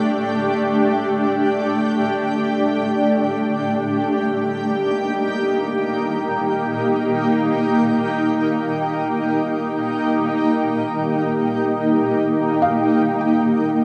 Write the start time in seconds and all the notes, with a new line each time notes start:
Already playing: A3 D4 G4 D5 G5
3.83 A#3
3.93 D#4
12.62 F5
13.21 A3 G5